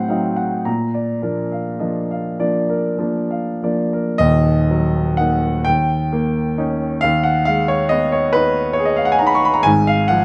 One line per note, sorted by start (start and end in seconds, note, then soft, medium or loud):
0.00 0.68 A2 medium
0.00 0.09 F#3 soft
0.00 0.09 C4 soft
0.00 0.10 D#4 medium
0.00 0.68 C5 medium
0.00 0.68 D#5 medium
0.00 0.25 F#5 medium
0.00 0.68 C6 medium
0.08 0.61 F#3 soft
0.08 0.61 C4 soft
0.08 0.62 D#4 medium
0.08 0.36 F5 soft
0.36 0.65 F#5 medium
0.65 1.22 A#2 medium
0.65 1.12 A#5 medium
0.94 1.41 D5 soft
1.22 1.77 F3 soft
1.22 1.77 A#3 soft
1.22 1.78 D4 soft
1.22 1.69 A#4 medium
1.52 1.99 F5 soft
1.80 2.35 F3 soft
1.80 2.35 A#3 soft
1.80 2.35 D4 soft
1.80 2.09 D#5 soft
2.11 2.57 F5 soft
2.39 2.95 F3 soft
2.39 2.96 A#3 soft
2.39 2.96 D4 medium
2.39 2.87 D5 medium
2.69 3.18 A#4 medium
2.98 3.58 F3 medium
2.98 3.58 A#3 soft
2.98 3.58 D4 medium
3.31 3.80 F5 medium
3.63 4.15 F3 soft
3.63 4.15 A#3 soft
3.63 4.15 D4 soft
3.63 4.09 D5 soft
3.93 4.19 A#4 soft
4.18 5.62 D#1 medium
4.18 5.63 D#2 medium
4.18 5.18 D#5 loud
4.71 5.48 F#3 medium
5.17 5.62 A#3 soft
5.17 5.62 D#4 medium
5.17 5.65 F#5 medium
5.65 7.00 D#2 medium
5.65 7.02 G5 loud
6.13 6.85 A#3 medium
6.58 6.99 C#4 medium
6.58 6.99 D#4 medium
7.01 9.63 D#2 medium
7.01 7.24 F5 loud
7.23 7.46 F#5 medium
7.45 8.18 G#3 medium
7.45 7.68 F5 loud
7.68 7.91 C#5 medium
7.89 8.61 B3 medium
7.89 8.12 D#5 medium
8.12 8.34 C#5 medium
8.33 9.05 D#4 medium
8.33 8.73 B4 loud
8.73 8.87 C#5 medium
8.79 9.49 G#4 medium
8.85 8.97 D#5 medium
8.96 9.07 F5 medium
9.05 9.14 F#5 medium
9.12 9.21 G#5 medium
9.19 9.66 D#4 medium
9.19 9.28 A#5 medium
9.27 9.36 B5 medium
9.35 9.45 C#6 medium
9.45 9.55 B5 medium
9.54 9.65 A#5 medium
9.63 10.25 G#1 medium
9.63 10.25 G#2 medium
9.63 9.86 G#5 loud
9.87 10.09 F5 medium
10.08 10.25 F3 medium
10.08 10.25 F#5 medium